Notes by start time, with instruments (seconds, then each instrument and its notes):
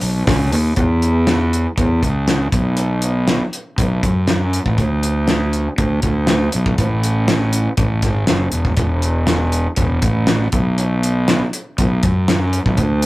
0.01 fingered electric bass B1, open hi-hat
0.27 fingered electric bass C#2, kick, snare, open hi-hat
0.52 fingered electric bass D#2, open hi-hat
0.76 fingered electric bass E2, kick, closed hi-hat
1.02 closed hi-hat
1.27 snare, closed hi-hat
1.53 closed hi-hat
1.78 fingered electric bass E2, kick, closed hi-hat
2.03 fingered electric bass C#2, kick, closed hi-hat
2.28 snare, closed hi-hat
2.52 fingered electric bass B1, kick, closed hi-hat
2.77 closed hi-hat
3.02 closed hi-hat
3.28 snare, closed hi-hat
3.53 closed hi-hat
3.78 fingered electric bass B1, kick, closed hi-hat
4.03 fingered electric bass F#2, kick, closed hi-hat
4.27 snare, closed hi-hat
4.53 closed hi-hat
4.66 fingered electric bass A1, kick
4.78 fingered electric bass D2, kick, closed hi-hat
5.03 closed hi-hat
5.28 snare, closed hi-hat
5.53 closed hi-hat
5.78 fingered electric bass D2, kick, closed hi-hat
6.02 fingered electric bass D2, kick, closed hi-hat
6.27 snare, closed hi-hat
6.52 fingered electric bass B1, closed hi-hat
6.66 kick
6.78 fingered electric bass A1, kick, closed hi-hat
7.03 closed hi-hat
7.28 snare, closed hi-hat
7.53 closed hi-hat
7.77 fingered electric bass A1, kick, closed hi-hat
8.02 fingered electric bass G#1, kick, snare, closed hi-hat
8.27 fingered electric bass F#1, snare, closed hi-hat
8.52 fingered electric bass E1, closed hi-hat
8.65 kick
8.77 fingered electric bass E1, kick, closed hi-hat
9.02 closed hi-hat
9.27 snare, closed hi-hat
9.52 closed hi-hat
9.76 fingered electric bass E1, kick, closed hi-hat
10.02 fingered electric bass A1, kick, closed hi-hat
10.27 snare, closed hi-hat
10.52 fingered electric bass B1, kick, closed hi-hat
10.78 closed hi-hat
11.03 closed hi-hat
11.28 snare, closed hi-hat
11.53 closed hi-hat
11.78 fingered electric bass B1, kick, closed hi-hat
12.03 fingered electric bass F#2, kick, closed hi-hat
12.28 snare, closed hi-hat
12.53 closed hi-hat
12.66 fingered electric bass B1, kick
12.77 fingered electric bass D2, kick, closed hi-hat
13.02 closed hi-hat